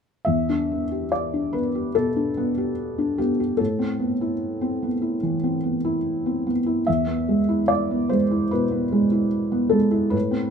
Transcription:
0.25 E2 E5
0.49 D4
0.72 B3
0.92 G4
1.12 D5
1.34 D4
1.53 B3 B4
1.75 G4
1.95 B2 A4
2.16 D4
2.37 B3
2.58 G4
2.98 D4
3.18 B3 G4
3.40 G4
3.57 A2 A4
3.79 C4
4.00 B3
4.21 E4
4.61 C4
4.83 B3
5.02 E4
5.23 E3
5.44 C4
5.63 B3
5.85 E4
6.26 C4
6.47 B3
6.66 E4
6.87 E2 E5
7.07 B3
7.29 G#3
7.49 E4
7.68 D5
7.91 B3
8.09 G#3 C5
8.31 E4
8.51 B2 B4
8.71 B3
8.92 G#3
9.11 E4
9.52 B3
9.70 G#3 A4
9.91 E4
10.10 A2 B4
10.31 C4

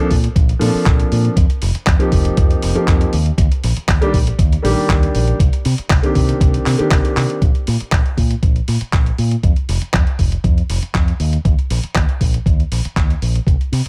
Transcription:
0.00 F3 A#3 C4 D4 A4
0.10 A#2, kick, open hi-hat
0.24 closed hi-hat
0.36 A#1, kick, closed hi-hat
0.49 closed hi-hat
0.59 A#2 F3 A#3 C4 D4 A4, open hi-hat
0.74 muted fingered electric bass stroke
0.86 A#1, kick, clap, closed hi-hat
1.00 closed hi-hat
1.12 A#2, open hi-hat
1.25 closed hi-hat
1.37 F2, kick, closed hi-hat
1.50 closed hi-hat
1.62 F1, open hi-hat
1.75 muted fingered electric bass stroke, closed hi-hat
1.87 F2, kick, clap, closed hi-hat
1.99 F3 A#3 C4 D#4 G4, closed hi-hat
2.12 F1, kick, open hi-hat
2.25 closed hi-hat
2.37 F2, kick, closed hi-hat
2.51 closed hi-hat
2.62 F1, open hi-hat
2.75 F3 A#3 C4 D#4 G4, closed hi-hat
2.88 F2, kick, clap, closed hi-hat
3.01 closed hi-hat
3.13 D#2, open hi-hat
3.26 closed hi-hat
3.38 D#2, kick, closed hi-hat
3.52 closed hi-hat
3.64 A#1, open hi-hat
3.77 muted fingered electric bass stroke, closed hi-hat
3.88 D#2, kick, clap, closed hi-hat
4.01 D#3 G3 A#3 D4 G4, closed hi-hat
4.13 A#1, kick, open hi-hat
4.27 closed hi-hat
4.39 D#2, kick, closed hi-hat
4.53 closed hi-hat
4.62 A#1 D#3 G3 A#3 D4 G4, open hi-hat
4.89 D#2, kick, clap, closed hi-hat
5.03 closed hi-hat
5.15 A#1, open hi-hat
5.28 closed hi-hat
5.40 C2, kick, closed hi-hat
5.53 closed hi-hat
5.65 C3, open hi-hat
5.78 muted fingered electric bass stroke, closed hi-hat
5.90 C2, kick, clap, closed hi-hat
6.02 D#3 A#3 C4 D4 G4, closed hi-hat
6.15 C3, kick, open hi-hat
6.29 closed hi-hat
6.41 C2, kick, closed hi-hat
6.54 closed hi-hat
6.66 C3, clap, open hi-hat
6.78 D#3 A#3 C4 D4 G4, muted fingered electric bass stroke, closed hi-hat
6.91 C2, kick, clap, closed hi-hat
7.05 closed hi-hat
7.17 C3, clap, open hi-hat
7.30 closed hi-hat
7.42 A#1, kick, closed hi-hat
7.55 closed hi-hat
7.67 A#2, open hi-hat
7.80 muted fingered electric bass stroke, closed hi-hat
7.92 A#1, kick, clap, closed hi-hat
8.06 closed hi-hat
8.17 A#2, kick, open hi-hat
8.31 closed hi-hat
8.43 A#1, kick, closed hi-hat
8.56 closed hi-hat
8.68 A#2, open hi-hat
8.81 muted fingered electric bass stroke, closed hi-hat
8.93 A#1, kick, clap, closed hi-hat
9.06 closed hi-hat
9.18 A#2, open hi-hat
9.31 closed hi-hat
9.43 F2, kick, closed hi-hat
9.56 closed hi-hat
9.69 F1, open hi-hat
9.82 closed hi-hat
9.94 F2, kick, clap, closed hi-hat
10.07 closed hi-hat
10.19 F1, kick, open hi-hat
10.32 closed hi-hat
10.44 F2, kick, closed hi-hat
10.58 closed hi-hat
10.69 F1, open hi-hat
10.82 muted fingered electric bass stroke, closed hi-hat
10.95 F2, kick, clap, closed hi-hat
11.08 closed hi-hat
11.20 D#2, open hi-hat
11.33 closed hi-hat
11.45 D#2, kick, closed hi-hat
11.59 closed hi-hat
11.70 A#1, open hi-hat
11.84 closed hi-hat
11.95 D#2, kick, clap, closed hi-hat
12.09 closed hi-hat
12.21 A#1, kick, open hi-hat
12.34 closed hi-hat
12.46 D#2, kick, closed hi-hat
12.60 closed hi-hat
12.72 A#1, open hi-hat
12.85 muted fingered electric bass stroke, closed hi-hat
12.96 D#2, kick, clap, closed hi-hat
13.10 closed hi-hat
13.22 A#1, open hi-hat
13.35 closed hi-hat
13.47 C2, kick, closed hi-hat
13.61 closed hi-hat
13.72 C3, open hi-hat
13.86 closed hi-hat

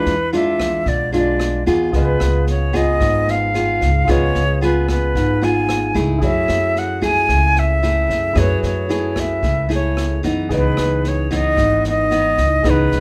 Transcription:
Already playing: E3 G#3 D4 F4 B4
0.06 E2, snare
0.33 G#3 D4 F4 E5, snare
0.59 kick, cross-stick, snare
0.86 B1 B2 D5, kick, snare
1.12 G#3 D4 F4 D5, snare
1.40 cross-stick, snare
1.66 E2 B3 F4 G#4, kick, snare
1.91 C#2 C#3 F4 G#4 B4, kick, snare
1.97 B4 D#5
2.20 C#2, cross-stick, snare
2.47 C#5, snare
2.73 B3 F4 G#4 D#5, kick, snare
3.00 G#1 G#2, kick, cross-stick, snare
3.28 F5, snare
3.54 B3 F4 G#4, snare
3.81 C#2, kick, snare
4.05 C#2 C#3 B3 F4 G#4, kick, cross-stick, snare
4.09 G#4 B4 C#5 D#5
4.35 C#2, snare
4.61 B3 F4 G#4 B4, snare
4.88 B4, kick, cross-stick, snare
5.15 G#1 G#2, kick, snare
5.41 B3 F4 G#4 G#5, snare
5.69 cross-stick, snare
5.94 C#2 A3 E4 G#4, kick, snare
6.18 F#2 F#3 E4 G#4, kick, snare
6.24 C#5 E5
6.48 F#2, cross-stick, snare
6.76 F#5, snare
7.01 A3 E4 G#4 G#5, kick, snare
7.29 C#2 C#3, kick, cross-stick, snare
7.56 E5, snare
7.83 A3 E4 G#4, snare
8.09 F#2, kick, snare
8.33 F#2 F#3 A3 E4 G#4, kick, cross-stick, snare
8.38 B4 C#5
8.63 F#2 C#5, snare
8.89 A3 E4 G#4, snare
9.16 E5, kick, cross-stick, snare
9.43 C#2 C#3, kick, snare
9.69 A3 E4 G#4, snare
9.75 C#5
9.97 cross-stick, snare
10.23 F#2 E3 B3 D#4, kick, snare
10.49 C#2 C#3 G#4 B4, kick, snare
10.53 B4 D#5
10.77 C#2, cross-stick, snare
11.04 snare
11.08 C#5
11.30 E3 B3 D#4, kick, snare
11.37 D#5
11.57 G#1 G#2, kick, cross-stick, snare
11.84 snare
11.89 D#5
12.11 E3 B3 D#4, snare
12.37 C#2, kick, snare
12.63 C#2 C#3 E3 B3 D#4 G#4 B4, kick, cross-stick, snare
12.67 B4 D#5
12.92 C#2, snare

